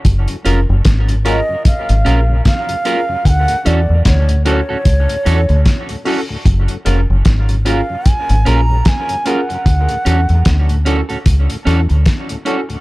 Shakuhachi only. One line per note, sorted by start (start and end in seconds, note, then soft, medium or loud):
1.27 1.63 D#5 medium
1.66 2.42 F5 loud
2.46 3.27 F5 loud
3.26 3.68 F#5 loud
3.26 3.30 G#5 loud
3.66 4.06 D5 loud
4.06 4.43 C#5 loud
4.47 6.02 C#5 loud
7.69 8.10 F5 loud
8.09 8.50 G#5 loud
8.49 8.90 A#5 loud
8.88 9.29 G#5 loud
9.27 10.87 F#5 loud